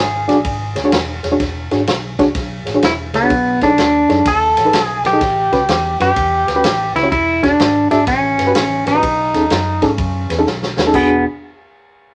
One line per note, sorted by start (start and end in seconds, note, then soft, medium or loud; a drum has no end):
0.00 0.25 G#1 medium
0.00 1.21 G#4 medium
0.28 0.43 B1 medium
0.28 0.36 D4 medium
0.28 0.37 F#4 medium
0.28 0.37 G#4 medium
0.28 0.37 D5 loud
0.28 snare soft
0.28 ride medium
0.44 0.72 G#1 medium
0.44 kick loud
0.44 ride medium
0.75 0.90 D2 medium
0.75 0.80 G#4 medium
0.75 0.80 C#5 medium
0.75 snare soft
0.75 ride medium
0.84 0.92 D4 medium
0.84 0.92 F#4 medium
0.84 0.93 G#4 medium
0.84 0.93 C#5 medium
0.92 1.20 E1 medium
0.92 snare loud
0.92 ride medium
1.23 1.38 E1 medium
1.23 1.28 G#4 medium
1.23 1.28 C#5 medium
1.23 snare soft
1.23 ride medium
1.32 1.40 D4 medium
1.32 1.40 F#4 medium
1.32 1.40 G#4 medium
1.32 1.40 C#5 medium
1.40 1.68 E1 medium
1.40 kick loud
1.40 snare soft
1.40 ride medium
1.71 1.86 G#1 medium
1.71 1.80 D4 medium
1.71 1.80 F#4 medium
1.71 1.80 G#4 medium
1.71 1.80 C#5 medium
1.71 snare soft
1.71 ride soft
1.87 2.15 B1 medium
1.87 snare medium
1.87 ride medium
2.19 2.33 C#2 medium
2.19 2.27 D4 medium
2.19 2.27 F#4 medium
2.19 2.27 G#4 medium
2.19 2.28 C#5 medium
2.19 kick medium
2.19 snare soft
2.19 ride medium
2.35 2.63 B1 medium
2.35 kick loud
2.35 snare soft
2.35 ride medium
2.65 2.81 A1 medium
2.65 2.70 G#4 medium
2.65 2.71 C#5 medium
2.65 snare soft
2.65 ride medium
2.74 2.83 D4 medium
2.74 2.83 F#4 medium
2.74 2.83 G#4 medium
2.74 2.83 C#5 medium
2.82 3.10 E1 medium
2.82 2.93 E4 medium
2.82 snare loud
2.82 ride medium
3.13 3.28 C#2 medium
3.13 3.59 B3 medium
3.13 3.18 G#4 medium
3.13 3.19 C#5 medium
3.13 snare soft
3.13 ride medium
3.23 3.31 D4 medium
3.23 3.31 F#4 medium
3.23 3.31 G#4 medium
3.23 3.31 C#5 medium
3.30 3.58 B1 medium
3.30 kick loud
3.30 ride medium
3.61 3.76 B1 medium
3.61 4.28 D4 medium
3.61 3.70 D#4 medium
3.61 3.70 G#4 medium
3.61 3.70 A4 medium
3.61 3.71 C#5 medium
3.61 kick medium
3.61 snare soft
3.61 ride medium
3.78 4.06 D#2 medium
3.78 snare medium
3.78 ride medium
4.09 4.24 F#2 medium
4.09 4.17 D#4 medium
4.09 4.18 G#4 medium
4.09 4.18 A4 medium
4.09 4.18 C#5 medium
4.09 snare soft
4.09 ride medium
4.25 4.53 D#2 medium
4.25 4.84 A4 loud
4.25 kick loud
4.25 snare soft
4.25 ride loud
4.57 4.71 A1 medium
4.57 4.62 A4 medium
4.57 4.62 C#5 medium
4.57 snare soft
4.57 ride medium
4.65 4.73 D#4 medium
4.65 4.74 G#4 medium
4.65 4.74 A4 medium
4.65 4.74 B4 medium
4.73 5.01 B1 medium
4.73 snare loud
4.73 ride medium
4.84 5.06 G#4 loud
5.04 5.19 B1 medium
5.04 5.97 G4 medium
5.04 5.09 A4 medium
5.04 5.09 B4 medium
5.04 snare soft
5.04 ride medium
5.12 5.21 D#4 medium
5.12 5.21 G#4 medium
5.12 5.21 A4 medium
5.12 5.21 D#5 medium
5.21 5.49 A1 medium
5.21 kick loud
5.21 snare soft
5.21 ride medium
5.52 5.67 C#2 medium
5.52 5.61 C#4 medium
5.52 5.61 F#4 medium
5.52 5.61 G4 medium
5.52 5.61 B4 medium
5.52 kick medium
5.52 snare soft
5.52 ride soft
5.68 5.96 E2 medium
5.68 snare loud
5.68 ride medium
6.00 6.14 F#2 medium
6.00 6.08 C#4 medium
6.00 6.08 F#4 medium
6.00 6.09 G4 medium
6.00 6.95 G4 medium
6.00 6.09 B4 medium
6.00 snare soft
6.00 ride medium
6.16 6.44 E2 medium
6.16 kick loud
6.16 ride medium
6.47 6.62 D2 medium
6.47 6.52 G4 medium
6.47 6.52 B4 medium
6.47 snare soft
6.47 ride medium
6.55 6.64 C#4 medium
6.55 6.64 F#4 medium
6.55 6.64 G4 medium
6.55 6.64 B4 medium
6.64 6.92 A1 medium
6.64 snare loud
6.64 ride medium
6.94 7.10 C#2 medium
6.94 7.11 E4 medium
6.94 6.99 G4 medium
6.94 7.00 B4 medium
6.94 snare soft
6.94 ride medium
7.03 7.12 C#4 medium
7.03 7.12 F#4 medium
7.03 7.12 G4 medium
7.03 7.12 C#5 medium
7.12 7.40 E1 medium
7.12 7.41 E4 medium
7.12 kick loud
7.12 ride medium
7.43 7.58 E1 medium
7.43 7.51 D4 medium
7.43 7.88 D4 medium
7.43 7.51 F#4 medium
7.43 7.52 G#4 medium
7.43 7.52 C#5 medium
7.43 kick medium
7.43 snare soft
7.43 ride medium
7.59 7.87 G#1 medium
7.59 snare loud
7.59 ride medium
7.91 8.05 G#1 medium
7.91 7.99 D4 medium
7.91 8.06 D4 medium
7.91 7.99 F#4 medium
7.91 7.99 G#4 medium
7.91 7.99 E5 medium
7.91 snare soft
7.91 ride medium
8.07 8.35 A1 medium
8.07 8.54 C#4 medium
8.07 kick loud
8.07 snare soft
8.07 ride medium
8.38 8.53 G1 medium
8.38 8.43 G4 medium
8.38 8.43 B4 medium
8.38 snare soft
8.38 ride medium
8.47 8.55 C#4 medium
8.47 8.55 F#4 medium
8.47 8.55 G4 medium
8.47 8.55 B4 medium
8.55 8.83 A1 medium
8.55 8.85 C#4 medium
8.55 snare loud
8.55 ride medium
8.86 9.01 A1 medium
8.86 9.90 D#4 medium
8.86 8.91 G4 medium
8.86 8.91 B4 medium
8.86 snare soft
8.86 ride medium
8.94 9.03 C#4 medium
8.94 9.03 F#4 medium
8.94 9.03 G4 medium
8.94 9.03 B4 medium
9.03 9.31 B1 medium
9.03 kick loud
9.03 ride medium
9.34 9.48 D#2 medium
9.34 9.42 C#4 medium
9.34 9.43 D#4 medium
9.34 9.43 G#4 medium
9.34 9.43 A4 medium
9.34 snare soft
9.34 ride medium
9.50 9.78 F#2 medium
9.50 snare medium
9.50 ride medium
9.82 9.96 G#2 medium
9.82 9.90 C#4 medium
9.82 9.90 D#4 medium
9.82 9.91 G#4 medium
9.82 9.91 A4 medium
9.82 kick medium
9.82 snare soft
9.82 ride medium
9.90 10.43 C#4 medium
9.98 10.26 F#2 medium
9.98 kick loud
9.98 ride medium
10.29 10.44 E2 medium
10.29 10.34 G#4 medium
10.29 10.34 B4 medium
10.29 snare soft
10.29 ride medium
10.38 10.46 C#4 medium
10.38 10.46 D#4 medium
10.38 10.47 G#4 medium
10.38 10.47 A4 medium
10.46 10.74 B1 medium
10.46 snare medium
10.63 snare medium
10.77 10.92 D#2 medium
10.77 10.82 G#4 medium
10.77 10.82 B4 medium
10.77 snare loud
10.86 10.94 C#4 medium
10.86 10.94 D#4 medium
10.86 10.93 G#4 medium
10.86 10.94 A4 medium
10.94 11.23 E1 medium
10.94 11.24 B3 medium
10.94 11.24 D4 medium
10.94 11.23 F#4 medium
10.94 11.23 G#4 medium
10.94 kick medium
10.94 crash medium